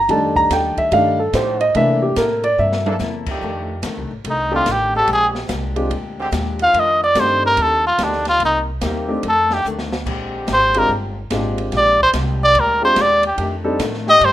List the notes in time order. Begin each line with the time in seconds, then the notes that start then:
0.08 F2 D#3 F3 G3 A3 D4 D#4 A4 D5 A5, kick, ride
0.36 A#5, kick
0.50 D#2 F3 D#4 A4 D5 G5, kick, snare, hi-hat pedal, ride
0.77 E5, muted upright bass stroke, kick, ride
0.91 G2 D#3 F3 G3 A3 D4 D#4 A4 D5 F5, kick, ride
1.20 A4
1.33 A2 D#3 F3 A3 D4 D#4 G4 A4 C5 D5, kick, snare, hi-hat pedal, ride
1.61 D#5, ride
1.75 C3 E3 A3 A#3 D4 E4 A4 E5, kick, ride
2.02 G4
2.16 A2 C3 A#3 E4 A4 A#4, kick, snare, hi-hat pedal, ride
2.44 D5, ride
2.58 G2 C3 A#3 E4 A4 E5
2.72 snare
2.86 E3 A#3 D4 A4, mid tom
2.99 E2 C3 A#3 E4 A4, snare, hi-hat pedal
3.26 F2 D#3 A3 D4 G4, kick, crash
3.41 F2 D#3 A3 D4
3.82 D2 F2 D#3 A3 D4, kick, snare, hi-hat pedal, ride
3.97 C2
4.11 A1
4.24 C2 F2 D#3 A3 D4, kick, ride
4.30 D#4
4.51 D#3 G3 A3 C4 D4 D#4 G4 A4
4.56 F4
4.66 A1 F2 D#3 A3 D4, kick, snare, hi-hat pedal, ride
4.72 G4
4.94 D3 G#3 C4 G4 A4
5.07 A#1 A#2 G#3 D4 G4, kick, ride
5.13 G#4
5.35 snare
5.47 C2 A#2 G#3 D4 G4, kick, snare, hi-hat pedal, ride
5.75 G#3 C4 D4 F4 G4, ride
5.90 D2 A#2 G#3 D4 G4, kick, ride
6.19 D3 G#3 C4 G4
6.31 D#2 A#2 G#3 D4 G4, kick, snare, hi-hat pedal, ride
6.59 D#3 A3 D4 F4 F5, ride
6.72 F2 D#3 A3 D4, kick, ride
6.79 D#5
7.04 D5
7.14 F2 G2 D#3 A3 C4 D4 D#4 G4, kick, snare, hi-hat pedal, ride
7.20 C5
7.46 A#4
7.57 D#2 F2 D#3 A3 D4, kick, ride
7.62 A4
7.87 F4
7.98 D2 F2 D#3 A3 D4 D#4 G4, kick, snare, hi-hat pedal, ride
8.04 D4
8.13 snare
8.25 F4, snare, ride
8.40 C2 C3 G3 A#3 D#4, kick, ride
8.45 D#4
8.81 D#2 C3 D#3 G3 A#3 C4 D#4 G4, kick, snare, hi-hat pedal, ride
9.08 A3 C4 D4 D#4 G4
9.23 F2 D#3 A3 D4, kick, ride
9.29 A4
9.50 D#3 A3 D4 G4, snare
9.64 D2 F2 D#3 A3 D4, hi-hat pedal
9.79 snare
9.93 snare
10.05 A#1 A#2 D3 G#3 C4 D4 G4, kick, crash
10.47 G#1 A#2 G#3 D4 G4, kick, snare, hi-hat pedal, ride
10.53 C5
10.74 G#3 C4 D4 F4 G4, ride
10.79 A#4
10.89 G1 A#2 G#3 D4 G4, kick
11.30 G#1 A#2 G#3 C4 D4 F4 G4, kick, snare, hi-hat pedal, ride
11.58 ride
11.72 A#1 A#2 D3 G#3 C4 D4 G4, kick, snare, ride
11.77 D5
11.99 C5, kick
12.13 C2 A#2 G#3 D4 G4, kick, snare, hi-hat pedal, ride
12.44 D5
12.54 D2 A#2 G#3 D4 G4, kick, ride
12.60 A#4
12.82 G#3 C4 D4 F4 G4 C5
12.96 D#2 A#2 G#3 D4 G4, kick, snare, hi-hat pedal, ride
13.01 D5
13.23 ride
13.27 G4
13.36 F2 D#3 A3 D4 G4, kick, ride
13.40 D4
13.64 G3 C4 D4 D#4 A4
13.79 F2 A2 D#3 A3 D4, kick, snare, hi-hat pedal, ride
13.94 snare
14.05 D#3 A3 D4 G4, snare
14.10 D#5
14.21 F2 G2 D#3 A3 D4, kick, ride
14.25 C5